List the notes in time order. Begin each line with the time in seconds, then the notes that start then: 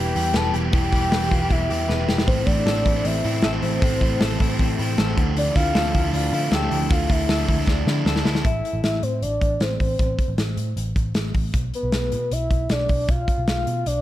Already playing: E1 E3 G3 B3 E4 G4 B4 G5
0.15 E2 E3 G3 E4 G4 B4, hi-hat pedal, open hi-hat
0.34 E1 B4 A5, snare, hi-hat pedal, open hi-hat
0.44 E3 G3 E4 G4 B4
0.53 E1 G4 G5, hi-hat pedal, open hi-hat
0.72 E1 E3 G3 E4 G4 B4 G5, kick, hi-hat pedal, open hi-hat
0.92 E1 G3 E4 G4 B4, kick, hi-hat pedal, open hi-hat
1.12 E1 B4, snare, hi-hat pedal, open hi-hat
1.22 E3 G3 E4 G4 B4
1.31 E1 F4, kick, hi-hat pedal, open hi-hat
1.40 E4 G4 B4
1.50 E1 E4 E5, kick, hi-hat pedal, open hi-hat
1.69 E2 E3 G3 E4 G4 B4, hi-hat pedal, open hi-hat
1.88 E1 B4, snare
1.99 E3 G3 E4 G4 B4
2.08 E1 G4, snare
2.18 snare
2.27 A1 A2 C3 A3 C4 A4 C5, kick, hi-hat pedal, open hi-hat
2.46 A1 A3 C4 E4 A4 C5 D5, kick, hi-hat pedal, open hi-hat
2.66 A1 A4, snare, hi-hat pedal, open hi-hat
2.76 A2 E3 A3 C4 A4 C5
2.86 A1 E4, kick, hi-hat pedal, open hi-hat
2.95 A3 C4 A4 C5
3.04 A1 C4 E5, hi-hat pedal, open hi-hat
3.24 A2 E3 A3 C4 E4 A4 C5, hi-hat pedal, open hi-hat
3.42 A1 A4 E5, snare, hi-hat pedal, open hi-hat
3.53 A2 E3 A3 C4 A4 C5
3.62 A1 E4 C5, hi-hat pedal, open hi-hat
3.81 A1 A2 A3 C4 A4 C5, kick, hi-hat pedal, open hi-hat
4.01 A1 A3 C4 E4 A4 C5, kick, hi-hat pedal, open hi-hat
4.20 A1 A4, snare, hi-hat pedal, open hi-hat
4.30 A2 E3 A3 C4 A4 C5
4.40 A1 E4, kick, hi-hat pedal, open hi-hat
4.49 A3 C4 A4 C5
4.59 A1 C4, kick, hi-hat pedal, open hi-hat
4.79 A2 E3 A3 C4 E4 A4 C5, hi-hat pedal, open hi-hat
4.98 A1 A4, snare, hi-hat pedal, open hi-hat
5.08 A2 E3 A3 C4 A4 C5
5.17 D2 D3 F3 A3 D4 E4 A4, kick, hi-hat pedal, open hi-hat
5.37 D3 D5, hi-hat pedal, open hi-hat
5.56 D2 A3 D4 E4 A4 F5, kick, hi-hat pedal, open hi-hat
5.75 D2 A4, snare, hi-hat pedal, open hi-hat
5.85 D3 F3 A3 D4 E4 A4
5.94 D2 E4, kick, hi-hat pedal, open hi-hat
6.04 A3 D4 E4 A4
6.13 D2 D4 F5, hi-hat pedal, open hi-hat
6.32 D3 F3 A3 D4 E4 A4, hi-hat pedal, open hi-hat
6.51 D2 A4 G5, snare, hi-hat pedal, open hi-hat
6.63 D3 F3 A3 D4 E4 A4
6.71 D2 E4, hi-hat pedal, open hi-hat
6.90 D2 D3 A3 D4 E4 A4 F5, kick, hi-hat pedal, open hi-hat
7.09 D2 A3 D4 E4 A4 E5, kick, hi-hat pedal, open hi-hat
7.29 D2 A4, snare, hi-hat pedal, open hi-hat
7.38 D3 F3 A3 D4 E4 A4
7.48 D2 E4, kick, hi-hat pedal, open hi-hat
7.58 A3 D4 E4 A4
7.67 D2 D4, kick, snare
7.86 D3 F3 A3 D4 E4 A4, snare
8.05 D2 A4, snare
8.16 D3 F3 A3 D4 E4 A4, snare
8.25 D2 E4, snare
8.35 snare
8.45 A1 E5, kick, closed hi-hat
8.65 closed hi-hat
8.73 A1
8.83 A1 E5, snare, closed hi-hat
9.03 A2 C5, closed hi-hat
9.22 A1 D5, closed hi-hat
9.41 A1, kick, closed hi-hat
9.60 A1 C5, snare, closed hi-hat
9.80 A1 C5, kick, open hi-hat
9.99 A1, kick, closed hi-hat
10.19 kick, closed hi-hat
10.28 A1
10.38 A1, snare, closed hi-hat
10.57 A2, closed hi-hat
10.77 A1, closed hi-hat
10.96 A1, kick, closed hi-hat
11.15 A1, snare, closed hi-hat
11.34 A1, kick, open hi-hat
11.54 B1, kick, closed hi-hat
11.74 B4, closed hi-hat
11.83 B1
11.92 B1 B4, snare, closed hi-hat
12.12 B2, closed hi-hat
12.31 B1 E5, closed hi-hat
12.51 B1, kick, closed hi-hat
12.69 B1 D5, snare, closed hi-hat
12.89 B1, kick, open hi-hat
13.09 B1 F5, kick, closed hi-hat
13.28 kick, closed hi-hat
13.38 B1
13.47 B1 F5, snare, closed hi-hat
13.67 B2, closed hi-hat
13.86 B1 D5, closed hi-hat